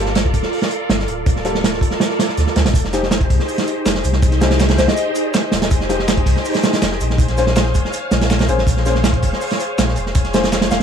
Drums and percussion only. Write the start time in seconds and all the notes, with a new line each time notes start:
0.06 snare
0.15 snare, closed hi-hat
0.25 kick
0.34 kick, closed hi-hat
0.43 snare
0.53 open hi-hat
0.62 snare
0.71 closed hi-hat
0.89 snare, closed hi-hat
0.99 snare
1.08 closed hi-hat
1.26 kick, closed hi-hat
1.36 snare
1.44 snare, closed hi-hat
1.55 snare
1.64 snare, closed hi-hat
1.73 snare
1.81 kick, closed hi-hat
1.91 snare
2.00 snare, closed hi-hat
2.10 snare
2.19 snare, closed hi-hat
2.29 snare
2.37 snare, closed hi-hat
2.47 snare
2.56 snare, closed hi-hat
2.65 snare, closed hi-hat
2.74 kick, closed hi-hat, shaker
2.84 snare
2.93 snare, closed hi-hat, shaker
3.03 snare
3.11 snare, closed hi-hat, shaker
3.21 kick, closed hi-hat
3.30 kick, closed hi-hat, open hi-hat
3.39 snare
3.48 open hi-hat, shaker
3.58 snare, closed hi-hat
3.67 snare, closed hi-hat, shaker
3.86 snare, closed hi-hat, shaker
3.95 snare
4.04 closed hi-hat, shaker
4.13 snare
4.22 kick, closed hi-hat, shaker
4.32 snare, closed hi-hat
4.41 snare, closed hi-hat, shaker
4.50 snare, closed hi-hat
4.60 snare, closed hi-hat, shaker
4.68 snare, closed hi-hat
4.78 snare, closed hi-hat, shaker
4.88 snare, closed hi-hat
4.97 closed hi-hat, shaker
5.15 closed hi-hat, shaker
5.34 snare, closed hi-hat, shaker
5.52 snare, closed hi-hat, shaker
5.62 snare, closed hi-hat
5.71 kick, closed hi-hat, shaker
5.80 snare
5.89 snare, closed hi-hat, shaker
5.99 snare
6.08 snare, closed hi-hat, shaker
6.17 kick, closed hi-hat
6.26 kick, closed hi-hat, open hi-hat
6.36 snare
6.45 open hi-hat, shaker
6.54 snare, closed hi-hat
6.63 snare, closed hi-hat, shaker
6.73 snare, closed hi-hat
6.82 snare, closed hi-hat, shaker
6.92 snare
7.00 closed hi-hat, shaker
7.10 snare
7.18 kick, closed hi-hat, shaker
7.28 snare, closed hi-hat
7.37 snare, closed hi-hat, shaker
7.47 snare
7.56 snare, closed hi-hat, shaker
7.66 snare
7.74 kick, closed hi-hat, shaker
7.85 snare
7.93 closed hi-hat, shaker
8.11 snare, closed hi-hat, shaker
8.21 snare, closed hi-hat
8.30 snare, closed hi-hat, shaker
8.39 snare, closed hi-hat
8.49 closed hi-hat, shaker
8.58 snare
8.67 kick, closed hi-hat, shaker
8.77 snare
8.85 snare, closed hi-hat, shaker
8.95 snare
9.04 snare, closed hi-hat, shaker
9.13 kick, closed hi-hat
9.23 kick, closed hi-hat, open hi-hat
9.33 snare
9.41 open hi-hat, shaker
9.51 snare, closed hi-hat
9.60 snare, closed hi-hat, shaker
9.78 snare, closed hi-hat, shaker
9.88 snare
9.96 closed hi-hat, shaker
10.06 snare
10.15 kick, closed hi-hat, shaker
10.24 snare, closed hi-hat
10.34 snare, closed hi-hat, shaker
10.43 snare, closed hi-hat
10.52 snare, closed hi-hat, shaker
10.61 snare, closed hi-hat
10.71 snare, closed hi-hat, shaker